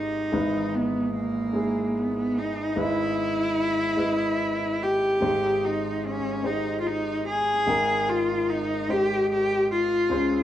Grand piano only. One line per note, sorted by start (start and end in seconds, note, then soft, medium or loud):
0.00 0.30 G#1 soft
0.00 0.30 G#2 soft
0.00 0.32 G#3 medium
0.00 0.33 D#4 soft
0.00 0.35 G4 soft
0.00 0.34 D#5 medium
0.32 2.72 G#1 soft
0.32 2.72 G#2 soft
0.32 1.26 E3 medium
0.32 1.26 G#3 medium
0.32 1.26 D#4 medium
0.32 1.26 B4 medium
1.53 2.47 G#3 medium
1.53 2.48 D#4 soft
1.53 2.48 E4 soft
1.53 2.48 G#4 medium
2.76 5.18 G#1 soft
2.76 5.18 G#2 soft
2.76 3.70 G#3 medium
2.76 3.70 E4 medium
2.76 3.71 B4 medium
2.76 3.70 D#5 medium
3.97 4.92 G#3 medium
3.97 4.93 E4 medium
3.97 4.93 B4 medium
3.97 4.93 D#5 medium
5.20 7.63 G#1 soft
5.20 7.63 G#2 soft
5.20 6.15 G#3 medium
5.20 6.16 D#4 medium
5.20 6.16 G4 medium
5.20 6.16 C5 medium
6.43 7.38 G#3 soft
6.43 7.38 D#4 soft
6.43 7.38 G4 soft
6.43 7.38 C5 medium
7.67 10.07 G#1 soft
7.67 10.07 G#2 soft
7.67 8.60 G#3 medium
7.67 8.61 D#4 medium
7.67 8.62 A#4 medium
7.67 8.61 G5 medium
8.89 9.82 G#3 medium
8.89 9.83 D#4 soft
8.89 9.83 G4 soft
8.89 9.83 C5 medium
10.10 10.43 C#2 medium
10.10 10.43 C#3 medium
10.10 10.43 G#3 medium
10.10 10.43 C#4 medium
10.10 10.43 F4 medium
10.10 10.43 C5 medium